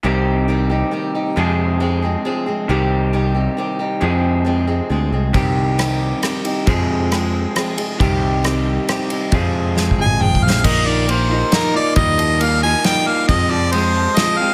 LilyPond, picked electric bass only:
\new Staff \with { instrumentName = "Picked electric bass" } { \clef bass \time 3/4 \key c \minor \tempo 4 = 136 c,2 r4 | f,2 r4 | c,2 r4 | f,2 d,8 c,8 |
r2. | f,2 r4 | c,2 r4 | f,4. g,,8 aes,,8 bes,,8 |
bes,,2 r4 | ees,2 r4 | f,2 r4 | }